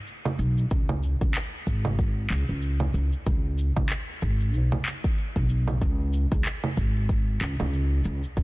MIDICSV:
0, 0, Header, 1, 3, 480
1, 0, Start_track
1, 0, Tempo, 638298
1, 533, Time_signature, 4, 2, 24, 8
1, 6339, End_track
2, 0, Start_track
2, 0, Title_t, "Upright bass"
2, 0, Program_c, 0, 32
2, 292, Note_on_c, 0, 35, 89
2, 493, Note_off_c, 0, 35, 0
2, 535, Note_on_c, 0, 37, 89
2, 869, Note_off_c, 0, 37, 0
2, 912, Note_on_c, 0, 37, 82
2, 994, Note_off_c, 0, 37, 0
2, 1254, Note_on_c, 0, 32, 79
2, 1702, Note_off_c, 0, 32, 0
2, 1731, Note_on_c, 0, 37, 97
2, 1843, Note_off_c, 0, 37, 0
2, 1871, Note_on_c, 0, 37, 82
2, 2182, Note_off_c, 0, 37, 0
2, 2211, Note_on_c, 0, 37, 89
2, 2323, Note_off_c, 0, 37, 0
2, 2455, Note_on_c, 0, 37, 90
2, 2789, Note_off_c, 0, 37, 0
2, 2832, Note_on_c, 0, 37, 85
2, 2914, Note_off_c, 0, 37, 0
2, 3176, Note_on_c, 0, 32, 83
2, 3416, Note_off_c, 0, 32, 0
2, 3416, Note_on_c, 0, 35, 93
2, 3525, Note_off_c, 0, 35, 0
2, 4032, Note_on_c, 0, 35, 86
2, 4342, Note_off_c, 0, 35, 0
2, 4374, Note_on_c, 0, 37, 92
2, 4708, Note_off_c, 0, 37, 0
2, 4752, Note_on_c, 0, 37, 89
2, 4834, Note_off_c, 0, 37, 0
2, 5092, Note_on_c, 0, 32, 75
2, 5541, Note_off_c, 0, 32, 0
2, 5572, Note_on_c, 0, 37, 101
2, 5683, Note_off_c, 0, 37, 0
2, 5712, Note_on_c, 0, 37, 85
2, 6022, Note_off_c, 0, 37, 0
2, 6055, Note_on_c, 0, 37, 93
2, 6165, Note_off_c, 0, 37, 0
2, 6293, Note_on_c, 0, 37, 96
2, 6339, Note_off_c, 0, 37, 0
2, 6339, End_track
3, 0, Start_track
3, 0, Title_t, "Drums"
3, 52, Note_on_c, 9, 82, 41
3, 128, Note_off_c, 9, 82, 0
3, 191, Note_on_c, 9, 64, 73
3, 192, Note_on_c, 9, 82, 26
3, 266, Note_off_c, 9, 64, 0
3, 267, Note_off_c, 9, 82, 0
3, 294, Note_on_c, 9, 82, 72
3, 369, Note_off_c, 9, 82, 0
3, 431, Note_on_c, 9, 82, 32
3, 506, Note_off_c, 9, 82, 0
3, 532, Note_on_c, 9, 82, 43
3, 535, Note_on_c, 9, 36, 108
3, 607, Note_off_c, 9, 82, 0
3, 610, Note_off_c, 9, 36, 0
3, 671, Note_on_c, 9, 64, 74
3, 746, Note_off_c, 9, 64, 0
3, 773, Note_on_c, 9, 82, 71
3, 848, Note_off_c, 9, 82, 0
3, 912, Note_on_c, 9, 36, 101
3, 914, Note_on_c, 9, 82, 30
3, 987, Note_off_c, 9, 36, 0
3, 989, Note_off_c, 9, 82, 0
3, 1014, Note_on_c, 9, 39, 79
3, 1015, Note_on_c, 9, 82, 40
3, 1089, Note_off_c, 9, 39, 0
3, 1090, Note_off_c, 9, 82, 0
3, 1254, Note_on_c, 9, 82, 76
3, 1255, Note_on_c, 9, 36, 58
3, 1329, Note_off_c, 9, 82, 0
3, 1330, Note_off_c, 9, 36, 0
3, 1389, Note_on_c, 9, 64, 75
3, 1391, Note_on_c, 9, 82, 31
3, 1465, Note_off_c, 9, 64, 0
3, 1466, Note_off_c, 9, 82, 0
3, 1494, Note_on_c, 9, 36, 99
3, 1496, Note_on_c, 9, 82, 42
3, 1570, Note_off_c, 9, 36, 0
3, 1572, Note_off_c, 9, 82, 0
3, 1733, Note_on_c, 9, 39, 74
3, 1734, Note_on_c, 9, 82, 75
3, 1808, Note_off_c, 9, 39, 0
3, 1809, Note_off_c, 9, 82, 0
3, 1868, Note_on_c, 9, 82, 34
3, 1943, Note_off_c, 9, 82, 0
3, 1970, Note_on_c, 9, 82, 44
3, 2045, Note_off_c, 9, 82, 0
3, 2106, Note_on_c, 9, 64, 71
3, 2181, Note_off_c, 9, 64, 0
3, 2211, Note_on_c, 9, 82, 73
3, 2286, Note_off_c, 9, 82, 0
3, 2349, Note_on_c, 9, 82, 34
3, 2425, Note_off_c, 9, 82, 0
3, 2454, Note_on_c, 9, 82, 41
3, 2455, Note_on_c, 9, 36, 118
3, 2529, Note_off_c, 9, 82, 0
3, 2531, Note_off_c, 9, 36, 0
3, 2694, Note_on_c, 9, 82, 83
3, 2769, Note_off_c, 9, 82, 0
3, 2831, Note_on_c, 9, 64, 72
3, 2832, Note_on_c, 9, 82, 33
3, 2833, Note_on_c, 9, 36, 111
3, 2906, Note_off_c, 9, 64, 0
3, 2907, Note_off_c, 9, 82, 0
3, 2908, Note_off_c, 9, 36, 0
3, 2930, Note_on_c, 9, 39, 82
3, 2932, Note_on_c, 9, 82, 44
3, 3006, Note_off_c, 9, 39, 0
3, 3007, Note_off_c, 9, 82, 0
3, 3173, Note_on_c, 9, 82, 76
3, 3176, Note_on_c, 9, 36, 62
3, 3248, Note_off_c, 9, 82, 0
3, 3251, Note_off_c, 9, 36, 0
3, 3309, Note_on_c, 9, 82, 30
3, 3384, Note_off_c, 9, 82, 0
3, 3413, Note_on_c, 9, 82, 42
3, 3488, Note_off_c, 9, 82, 0
3, 3551, Note_on_c, 9, 64, 78
3, 3626, Note_off_c, 9, 64, 0
3, 3653, Note_on_c, 9, 39, 76
3, 3654, Note_on_c, 9, 82, 75
3, 3728, Note_off_c, 9, 39, 0
3, 3729, Note_off_c, 9, 82, 0
3, 3792, Note_on_c, 9, 36, 98
3, 3792, Note_on_c, 9, 82, 35
3, 3867, Note_off_c, 9, 36, 0
3, 3867, Note_off_c, 9, 82, 0
3, 3893, Note_on_c, 9, 82, 47
3, 3969, Note_off_c, 9, 82, 0
3, 4031, Note_on_c, 9, 36, 60
3, 4106, Note_off_c, 9, 36, 0
3, 4131, Note_on_c, 9, 82, 81
3, 4206, Note_off_c, 9, 82, 0
3, 4268, Note_on_c, 9, 64, 81
3, 4269, Note_on_c, 9, 82, 35
3, 4343, Note_off_c, 9, 64, 0
3, 4344, Note_off_c, 9, 82, 0
3, 4373, Note_on_c, 9, 36, 113
3, 4374, Note_on_c, 9, 82, 42
3, 4448, Note_off_c, 9, 36, 0
3, 4449, Note_off_c, 9, 82, 0
3, 4612, Note_on_c, 9, 82, 83
3, 4687, Note_off_c, 9, 82, 0
3, 4750, Note_on_c, 9, 36, 109
3, 4751, Note_on_c, 9, 82, 33
3, 4826, Note_off_c, 9, 36, 0
3, 4826, Note_off_c, 9, 82, 0
3, 4851, Note_on_c, 9, 39, 81
3, 4852, Note_on_c, 9, 82, 45
3, 4926, Note_off_c, 9, 39, 0
3, 4928, Note_off_c, 9, 82, 0
3, 4991, Note_on_c, 9, 64, 70
3, 5066, Note_off_c, 9, 64, 0
3, 5093, Note_on_c, 9, 36, 61
3, 5094, Note_on_c, 9, 82, 76
3, 5168, Note_off_c, 9, 36, 0
3, 5169, Note_off_c, 9, 82, 0
3, 5232, Note_on_c, 9, 82, 31
3, 5308, Note_off_c, 9, 82, 0
3, 5333, Note_on_c, 9, 36, 101
3, 5335, Note_on_c, 9, 82, 43
3, 5408, Note_off_c, 9, 36, 0
3, 5410, Note_off_c, 9, 82, 0
3, 5578, Note_on_c, 9, 39, 71
3, 5579, Note_on_c, 9, 82, 76
3, 5653, Note_off_c, 9, 39, 0
3, 5654, Note_off_c, 9, 82, 0
3, 5714, Note_on_c, 9, 64, 75
3, 5715, Note_on_c, 9, 82, 35
3, 5789, Note_off_c, 9, 64, 0
3, 5790, Note_off_c, 9, 82, 0
3, 5814, Note_on_c, 9, 82, 46
3, 5890, Note_off_c, 9, 82, 0
3, 6051, Note_on_c, 9, 82, 78
3, 6126, Note_off_c, 9, 82, 0
3, 6191, Note_on_c, 9, 82, 35
3, 6266, Note_off_c, 9, 82, 0
3, 6293, Note_on_c, 9, 36, 112
3, 6293, Note_on_c, 9, 82, 42
3, 6339, Note_off_c, 9, 36, 0
3, 6339, Note_off_c, 9, 82, 0
3, 6339, End_track
0, 0, End_of_file